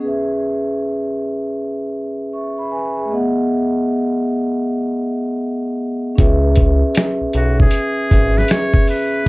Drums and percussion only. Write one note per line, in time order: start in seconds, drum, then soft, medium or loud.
6.18 kick loud
6.18 closed hi-hat medium
6.56 kick medium
6.56 closed hi-hat medium
6.95 finger snap medium
6.95 snare loud
6.95 closed hi-hat medium
7.33 closed hi-hat medium
7.60 kick medium
7.71 closed hi-hat medium
8.11 kick medium
8.11 closed hi-hat medium
8.38 snare soft
8.48 finger snap medium
8.48 snare loud
8.48 closed hi-hat medium
8.73 kick medium
8.87 open hi-hat soft